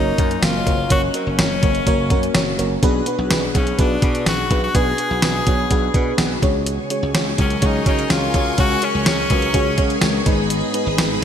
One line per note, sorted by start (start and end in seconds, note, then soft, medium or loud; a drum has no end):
0.00 0.12 F#1 loud
0.00 2.78 F#3 medium
0.00 0.18 A#3 loud
0.00 2.78 A#3 medium
0.00 0.18 C#4 loud
0.00 2.78 C#4 medium
0.00 0.45 D#4 loud
0.00 0.19 F#4 loud
0.00 0.19 A#4 loud
0.00 0.43 C#5 loud
0.18 0.36 F#2 loud
0.18 0.38 A#3 medium
0.18 0.38 C#4 medium
0.18 0.38 F#4 medium
0.18 0.38 A#4 medium
0.18 0.38 D#5 medium
0.18 kick loud
0.18 closed hi-hat medium
0.31 closed hi-hat soft
0.42 0.60 F#1 medium
0.42 0.62 A#3 medium
0.42 0.62 C#4 medium
0.42 0.91 F4 loud
0.42 0.62 F#4 medium
0.42 0.62 A#4 medium
0.42 0.62 C#5 medium
0.42 snare loud
0.42 closed hi-hat medium
0.42 tambourine medium
0.66 0.84 F#1 loud
0.66 0.86 A#3 medium
0.66 0.86 C#4 medium
0.66 0.86 F#4 medium
0.66 0.86 A#4 medium
0.66 0.86 C#5 medium
0.66 kick medium
0.66 closed hi-hat medium
0.90 1.08 F#1 loud
0.90 1.10 A#3 loud
0.90 1.10 C#4 medium
0.90 1.10 F#4 medium
0.90 1.02 F#4 loud
0.90 1.10 A#4 medium
0.90 1.10 C#5 loud
0.90 kick loud
0.90 closed hi-hat loud
1.14 1.34 A#3 medium
1.14 1.34 C#4 medium
1.14 2.55 C#4 loud
1.14 1.34 F#4 medium
1.14 1.34 A#4 medium
1.14 1.34 C#5 medium
1.14 closed hi-hat medium
1.27 1.35 F#1 medium
1.38 1.56 F#1 loud
1.38 1.58 A#3 medium
1.38 1.58 C#4 medium
1.38 1.58 F#4 medium
1.38 1.58 A#4 medium
1.38 1.59 C#5 medium
1.38 snare loud
1.38 closed hi-hat medium
1.38 tambourine medium
1.63 1.80 F#1 medium
1.63 1.82 A#3 medium
1.63 1.82 C#4 medium
1.63 1.82 F#4 medium
1.63 1.83 A#4 medium
1.63 1.83 C#5 medium
1.63 kick loud
1.63 closed hi-hat medium
1.75 closed hi-hat soft
1.86 2.12 F#1 loud
1.86 2.06 A#3 loud
1.86 2.06 C#4 loud
1.86 2.06 F#4 loud
1.86 2.06 A#4 loud
1.86 2.07 C#5 loud
1.86 kick medium
1.86 closed hi-hat medium
2.10 2.28 F#2 loud
2.10 2.30 A#3 loud
2.10 2.30 C#4 medium
2.10 2.30 F#4 medium
2.10 2.30 A#4 medium
2.10 2.31 C#5 loud
2.10 kick loud
2.10 closed hi-hat medium
2.23 closed hi-hat soft
2.34 2.52 F#1 loud
2.34 2.54 A#3 medium
2.34 2.54 C#4 medium
2.34 2.54 F#4 medium
2.34 2.54 A#4 medium
2.34 2.55 C#5 loud
2.34 snare loud
2.34 closed hi-hat medium
2.34 tambourine medium
2.58 2.76 F#1 loud
2.58 2.78 A#3 medium
2.58 2.78 C#4 medium
2.58 2.78 F#4 medium
2.58 2.78 A#4 medium
2.58 2.78 C#5 loud
2.58 closed hi-hat medium
2.83 3.00 B1 loud
2.83 3.51 B2 medium
2.83 3.02 B3 loud
2.83 3.02 D4 loud
2.83 6.39 F#4 medium
2.83 3.02 F#4 loud
2.83 6.39 G#4 medium
2.83 3.02 G#4 loud
2.83 6.39 B4 medium
2.83 3.03 B4 loud
2.83 kick loud
2.83 closed hi-hat loud
3.06 3.26 B3 medium
3.06 3.26 D4 medium
3.06 3.26 F#4 medium
3.06 3.26 G#4 medium
3.06 3.27 B4 loud
3.06 closed hi-hat medium
3.19 3.27 B1 loud
3.31 3.48 B1 loud
3.31 3.50 B3 medium
3.31 3.50 D4 medium
3.31 3.51 F#4 medium
3.31 3.51 G#4 medium
3.31 3.51 B4 loud
3.31 snare loud
3.31 closed hi-hat medium
3.31 tambourine medium
3.55 3.72 B1 loud
3.55 3.74 B3 medium
3.55 3.78 C#4 medium
3.55 3.74 D4 medium
3.55 3.74 F#4 medium
3.55 3.75 G#4 medium
3.55 3.75 B4 medium
3.55 kick loud
3.55 closed hi-hat medium
3.67 closed hi-hat medium
3.78 3.96 B1 loud
3.78 3.98 B3 loud
3.78 3.98 D4 loud
3.78 4.24 D4 loud
3.78 3.98 F#4 medium
3.78 3.98 G#4 loud
3.78 3.99 B4 loud
3.78 kick loud
3.78 closed hi-hat medium
4.02 4.28 B2 loud
4.02 4.22 B3 medium
4.02 4.22 D4 medium
4.02 4.22 F#4 medium
4.02 4.22 G#4 medium
4.02 4.23 B4 medium
4.02 kick loud
4.02 closed hi-hat medium
4.15 closed hi-hat soft
4.26 4.44 B1 loud
4.26 4.46 B3 medium
4.26 4.46 D4 medium
4.26 4.46 F#4 medium
4.26 4.61 F#4 loud
4.26 4.46 G#4 medium
4.26 4.46 B4 medium
4.26 snare loud
4.26 closed hi-hat medium
4.26 tambourine medium
4.50 4.68 B1 loud
4.50 4.70 B3 medium
4.50 4.70 D4 medium
4.50 4.70 F#4 medium
4.50 4.71 G#4 medium
4.50 4.71 B4 medium
4.50 kick medium
4.50 closed hi-hat medium
4.64 4.77 F#4 loud
4.75 4.92 B1 loud
4.75 5.43 B2 medium
4.75 4.94 B3 loud
4.75 4.94 D4 medium
4.75 4.94 F#4 medium
4.75 4.95 G#4 medium
4.75 5.23 G#4 loud
4.75 4.95 B4 loud
4.75 kick loud
4.75 closed hi-hat loud
4.98 5.18 B3 medium
4.98 5.18 D4 medium
4.98 5.18 F#4 medium
4.98 5.18 G#4 medium
4.98 5.19 B4 medium
4.98 closed hi-hat medium
5.11 5.19 B1 loud
5.22 5.40 B1 loud
5.22 5.42 B3 medium
5.22 5.42 D4 medium
5.22 5.42 F#4 medium
5.22 5.42 G#4 medium
5.22 5.91 G#4 loud
5.22 5.42 B4 medium
5.22 snare loud
5.22 closed hi-hat medium
5.22 tambourine medium
5.46 5.64 B1 loud
5.46 5.66 B3 medium
5.46 5.66 D4 medium
5.46 5.66 F#4 medium
5.46 5.66 G#4 medium
5.46 5.67 C#5 medium
5.46 kick loud
5.46 closed hi-hat medium
5.70 5.88 B1 loud
5.70 5.90 B3 loud
5.70 5.90 D4 medium
5.70 5.90 F#4 medium
5.70 5.90 G#4 medium
5.70 5.90 B4 loud
5.70 kick medium
5.70 closed hi-hat medium
5.94 6.12 B2 loud
5.94 6.14 B3 medium
5.94 6.14 D4 medium
5.94 6.14 F#4 medium
5.94 6.14 G#4 medium
5.94 6.14 B4 loud
5.94 kick loud
5.94 closed hi-hat medium
6.18 6.36 B1 loud
6.18 6.38 B3 medium
6.18 6.38 D4 medium
6.18 6.38 F#4 medium
6.18 6.38 G#4 medium
6.18 6.38 B4 loud
6.18 snare loud
6.18 closed hi-hat medium
6.18 tambourine medium
6.42 6.77 C#2 loud
6.42 7.11 C#3 medium
6.42 6.81 G#3 medium
6.42 6.81 C#4 medium
6.42 6.82 F#4 medium
6.42 6.82 G#4 medium
6.42 6.82 C#5 loud
6.42 kick loud
6.42 closed hi-hat medium
6.66 11.24 G#4 medium
6.66 10.23 G#5 medium
6.66 10.23 C#6 loud
6.66 closed hi-hat loud
6.90 7.10 G#3 medium
6.90 7.10 C#4 medium
6.90 7.10 F#4 medium
6.90 7.10 G#4 medium
6.90 7.10 C#5 medium
6.90 closed hi-hat medium
7.03 7.11 C#2 loud
7.14 7.32 C#2 loud
7.14 7.34 G#3 medium
7.14 7.34 C#4 medium
7.14 7.34 F#4 medium
7.14 7.34 G#4 medium
7.14 7.34 C#5 loud
7.14 snare loud
7.14 closed hi-hat medium
7.14 tambourine medium
7.38 7.56 C#2 loud
7.38 10.22 F#3 medium
7.38 7.58 G#3 medium
7.38 7.58 C#4 medium
7.38 10.22 C#4 medium
7.38 7.67 C#4 medium
7.38 7.58 F#4 medium
7.38 7.58 G#4 medium
7.38 10.22 A#4 medium
7.38 7.58 C#5 medium
7.38 kick loud
7.38 closed hi-hat medium
7.50 closed hi-hat soft
7.61 7.80 C#2 loud
7.61 7.81 G#3 loud
7.61 7.82 C#4 medium
7.61 7.88 D#4 medium
7.61 7.82 F#4 medium
7.61 7.82 G#4 medium
7.61 7.82 C#5 loud
7.61 kick loud
7.61 closed hi-hat medium
7.86 8.04 C#3 loud
7.86 8.06 G#3 medium
7.86 8.06 C#4 medium
7.86 8.14 D#4 medium
7.86 8.06 F#4 medium
7.86 8.06 G#4 medium
7.86 8.06 C#5 medium
7.86 kick loud
7.86 closed hi-hat medium
7.99 closed hi-hat soft
8.10 8.28 C#2 loud
8.10 8.30 G#3 medium
8.10 8.30 C#4 medium
8.10 8.59 F4 loud
8.10 8.30 F#4 medium
8.10 8.30 G#4 medium
8.10 8.30 C#5 medium
8.10 snare loud
8.10 closed hi-hat medium
8.10 tambourine medium
8.34 8.52 C#2 loud
8.34 9.02 C#3 medium
8.34 8.54 G#3 medium
8.34 8.54 C#4 medium
8.34 8.54 F#4 medium
8.34 8.54 G#4 medium
8.34 8.54 C#5 medium
8.34 kick medium
8.34 closed hi-hat medium
8.58 8.76 C#2 loud
8.58 8.78 G#3 loud
8.58 8.78 C#4 medium
8.58 8.78 F#4 medium
8.58 8.86 F#4 loud
8.58 8.78 G#4 medium
8.58 8.78 C#5 loud
8.58 kick loud
8.58 closed hi-hat medium
8.82 9.02 G#3 medium
8.82 9.02 C#4 medium
8.82 10.28 C#4 loud
8.82 9.02 F#4 medium
8.82 9.02 G#4 medium
8.82 9.02 C#5 medium
8.82 closed hi-hat medium
8.95 9.03 C#2 medium
9.06 9.24 C#2 medium
9.06 9.26 G#3 medium
9.06 9.26 C#4 medium
9.06 9.26 F#4 medium
9.06 9.26 G#4 medium
9.06 9.26 C#5 medium
9.06 snare loud
9.06 closed hi-hat medium
9.06 tambourine medium
9.30 9.48 C#2 loud
9.30 9.50 G#3 medium
9.30 9.50 C#4 medium
9.30 9.50 F#4 medium
9.30 9.50 G#4 medium
9.30 9.50 B4 medium
9.30 kick loud
9.30 closed hi-hat medium
9.42 closed hi-hat soft
9.53 9.79 C#2 loud
9.53 9.73 G#3 loud
9.53 9.74 C#4 loud
9.53 9.74 F#4 loud
9.53 9.74 G#4 loud
9.53 9.74 C#5 loud
9.53 kick medium
9.53 closed hi-hat medium
9.77 9.95 C#3 loud
9.77 9.97 G#3 loud
9.77 9.98 C#4 medium
9.77 9.98 F#4 medium
9.77 9.98 G#4 medium
9.77 9.98 C#5 loud
9.77 kick medium
9.77 closed hi-hat medium
9.90 closed hi-hat soft
10.01 10.20 C#2 loud
10.01 10.21 G#3 medium
10.01 10.22 C#4 medium
10.01 10.22 F#4 medium
10.01 10.22 G#4 medium
10.01 10.22 C#5 loud
10.01 snare loud
10.01 closed hi-hat medium
10.01 tambourine medium
10.25 10.61 G#1 loud
10.25 10.94 G#2 medium
10.25 10.65 G#3 loud
10.25 10.65 B3 medium
10.25 11.24 B3 medium
10.25 10.65 D#4 medium
10.25 11.24 D#4 medium
10.25 10.65 G#4 medium
10.25 11.24 G#4 medium
10.25 10.66 B4 loud
10.25 11.24 D#5 medium
10.25 11.24 B5 loud
10.25 kick loud
10.25 closed hi-hat medium
10.50 closed hi-hat loud
10.73 10.93 G#3 medium
10.73 10.93 B3 medium
10.73 10.94 D#4 medium
10.73 10.94 G#4 medium
10.73 10.94 B4 medium
10.73 closed hi-hat medium
10.87 10.95 G#1 loud
10.97 11.16 G#1 loud
10.97 11.17 G#3 medium
10.97 11.17 B3 medium
10.97 11.18 D#4 medium
10.97 11.18 G#4 medium
10.97 11.18 B4 loud
10.97 snare loud
10.97 closed hi-hat medium
10.97 tambourine medium